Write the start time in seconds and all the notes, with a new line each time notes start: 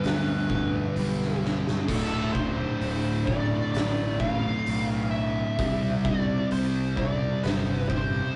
Already playing: G2 D3 G3 B4
0.04 D2, snare, open hi-hat
0.49 G2 D3 G3, kick
0.95 B1 G2 D3 G3, open hi-hat
1.22 snare
1.45 snare
1.67 snare
1.87 D1 D2 A2 D3 A4, kick, crash
2.33 C5, kick
2.81 D1, open hi-hat
3.26 A2 D3 D5, kick
3.30 D2
3.72 A1 D5, open hi-hat
3.77 snare
4.19 D2 A2 D3 F5, kick
4.65 B1 D2 A2 D3, open hi-hat
5.11 E5
5.58 C2 C3 G3 C4, kick, open hi-hat
6.05 D5, kick
6.51 C2 C5, open hi-hat
6.96 C3 G3 C4 D5, kick
7.43 G1 C5, snare, open hi-hat
7.89 C3 G3 C4 C5, kick